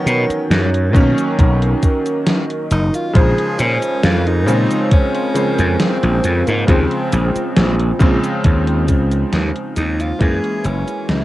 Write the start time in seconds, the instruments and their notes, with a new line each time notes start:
Already playing: electric grand piano D#3 F#3 C#4 A#4, tenor saxophone B3, ambient pad D#4 A#4 C#5
0.06 slap bass B2, closed hi-hat, cabasa
0.29 muted slap bass stroke, closed hi-hat, cabasa
0.50 slap bass F#2, snare, closed hi-hat, cabasa
0.74 closed hi-hat
0.93 slap bass B2, electric grand piano D#3 F#3 A#3 C#4, kick, closed hi-hat, cabasa
1.18 closed hi-hat, cabasa
1.39 slap bass B1, ambient pad D#5, kick, closed hi-hat, cabasa
1.62 closed hi-hat
1.83 kick, closed hi-hat, cabasa
2.06 closed hi-hat, cabasa
2.27 snare, closed hi-hat, cabasa
2.50 closed hi-hat
2.71 slap bass F#1, tenor saxophone D#4, closed hi-hat, cabasa
2.94 tenor saxophone F4, closed hi-hat, cabasa
3.13 slap bass A#1, electric grand piano C#3 F3 G#3 C5, ambient pad G#3 C5, tenor saxophone G#4, kick, closed hi-hat, cabasa
3.38 closed hi-hat
3.59 slap bass A#2, tenor saxophone C#4, closed hi-hat, cabasa
3.82 closed hi-hat, cabasa
4.03 slap bass F2, tenor saxophone F4, snare, closed hi-hat, cabasa
4.27 tenor saxophone D#4, closed hi-hat
4.46 slap bass A#2, electric grand piano C#3 F3 G#3 C4, cabasa
4.71 closed hi-hat, cabasa
4.91 tenor saxophone C#4, kick, closed hi-hat, cabasa
5.15 tenor saxophone C#4, closed hi-hat
5.34 electric grand piano C#3 F3 G#3 C5, closed hi-hat, cabasa
5.59 slap bass F2, closed hi-hat, cabasa
5.80 tenor saxophone C4, snare, closed hi-hat, cabasa
6.03 slap bass A#1, closed hi-hat
6.24 slap bass F2, closed hi-hat, cabasa
6.47 slap bass G#2, tenor saxophone A#3, closed hi-hat, cabasa
6.67 slap bass D#2, electric grand piano C#3 F3 G#3 C4, tenor saxophone C4, ambient pad F4, kick, closed hi-hat, cabasa
6.91 closed hi-hat
7.12 slap bass A#1, closed hi-hat, cabasa
7.35 muted slap bass stroke, closed hi-hat, cabasa
7.56 slap bass A#1, snare, closed hi-hat, cabasa
7.79 closed hi-hat
7.99 slap bass A#1, electric grand piano C#3 F3 G#3 C4, kick, closed hi-hat, cabasa
8.24 closed hi-hat, cabasa
8.44 slap bass D#2, ambient pad D#4, kick, closed hi-hat, cabasa
8.67 closed hi-hat
8.88 slap bass C#2, kick, closed hi-hat, cabasa
9.12 closed hi-hat, cabasa
9.33 slap bass D#2, snare, closed hi-hat, cabasa
9.56 closed hi-hat
9.76 slap bass D#2, tenor saxophone D#4, closed hi-hat, cabasa
10.00 tenor saxophone F4, closed hi-hat, cabasa
10.19 slap bass F#2, electric grand piano E3 G#3 A#3 C#4, ambient pad E3 F#4 A#4, tenor saxophone G#4, kick, closed hi-hat, cabasa
10.44 closed hi-hat
10.65 slap bass F#1, tenor saxophone C#4, closed hi-hat, cabasa
10.88 closed hi-hat, cabasa
11.09 slap bass C#2, tenor saxophone E4, snare, closed hi-hat, cabasa